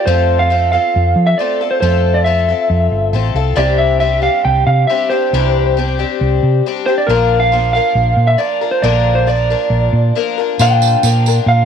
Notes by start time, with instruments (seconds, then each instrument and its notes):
0.06 fingered electric bass F2, twelve-string acoustic guitar F3 A3 C4 F4 A4, electric slide guitar C5
0.39 electric slide guitar F5
0.50 twelve-string acoustic guitar A3 C4 F4 A4
0.72 twelve-string acoustic guitar C4 F4 A4, electric slide guitar F5
0.96 fingered electric bass F2
1.16 fingered electric bass F3
1.27 electric slide guitar E5
1.38 twelve-string acoustic guitar A3 C4 F4 A4, electric slide guitar D5
1.61 twelve-string acoustic guitar C4 F4 A4
1.71 electric slide guitar C5
1.81 fingered electric bass F2, twelve-string acoustic guitar F3 A3 C4 F4 A4, electric slide guitar C5
2.14 electric slide guitar D5
2.24 twelve-string acoustic guitar A3 C4 F4 A4, electric slide guitar E5
2.49 twelve-string acoustic guitar C4 F4 A4
2.70 fingered electric bass F2
2.91 fingered electric bass G1
3.13 fingered electric bass A1, twelve-string acoustic guitar A3 C4 F4 A4
3.34 fingered electric bass C2, twelve-string acoustic guitar C4 F4 A4
3.56 fingered electric bass C2, twelve-string acoustic guitar C3 E3 G3 C4 D4 G4, electric slide guitar D5
3.78 electric slide guitar E5
4.00 twelve-string acoustic guitar G3 C4 D4 G4, electric slide guitar E5
4.21 twelve-string acoustic guitar G3 C4 D4 G4, electric slide guitar F5
4.45 fingered electric bass C2, electric slide guitar G5
4.67 fingered electric bass C3, electric slide guitar F5
4.87 twelve-string acoustic guitar G3 C4 D4 G4, electric slide guitar E5
5.10 twelve-string acoustic guitar G3 C4 D4 G4, electric slide guitar C5
5.33 fingered electric bass C2, twelve-string acoustic guitar C3 E3 G3 C4 D4 G4
5.77 twelve-string acoustic guitar G3 C4 D4 G4
5.99 twelve-string acoustic guitar G3 C4 D4 G4
6.21 fingered electric bass C2
6.43 fingered electric bass C3
6.66 twelve-string acoustic guitar G3 C4 D4 G4
6.86 twelve-string acoustic guitar G3 C4 D4 G4, electric slide guitar C5
6.98 electric slide guitar D5
7.07 fingered electric bass A#1, twelve-string acoustic guitar A#2 D3 F3 A#3 D4 A#4, electric slide guitar A#4
7.40 electric slide guitar F5
7.52 twelve-string acoustic guitar F3 A#3 D4 A#4
7.73 twelve-string acoustic guitar A#3 D4 A#4, electric slide guitar F5
7.77 twelve-string acoustic guitar F3
7.95 fingered electric bass A#1
8.17 fingered electric bass A#2
8.27 electric slide guitar E5
8.38 twelve-string acoustic guitar F3 A#3 D4 A#4, electric slide guitar D5
8.61 twelve-string acoustic guitar F3 A#3 D4 A#4
8.71 electric slide guitar C5
8.82 fingered electric bass A#1, twelve-string acoustic guitar A#2 D3 F3 A#3 D4 A#4, electric slide guitar D5
9.15 electric slide guitar C5
9.27 twelve-string acoustic guitar F3 A#3 D4 A#4, electric slide guitar D5
9.50 twelve-string acoustic guitar F3 A#3 D4 A#4
9.70 fingered electric bass A#1
9.93 fingered electric bass A#2
10.15 twelve-string acoustic guitar F3 A#3 D4 A#4
10.38 twelve-string acoustic guitar F3 A#3 D4 A#4
10.59 fingered electric bass A#2, twelve-string acoustic guitar A#2 D3 F3 A#3 D4 A#4, electric slide guitar G5, tambourine
10.82 tambourine
11.03 fingered electric bass A#2, twelve-string acoustic guitar F3 A#3 D4 A#4, tambourine
11.26 twelve-string acoustic guitar F3 A#3 D4 A#4, tambourine
11.46 fingered electric bass A#2, electric slide guitar F5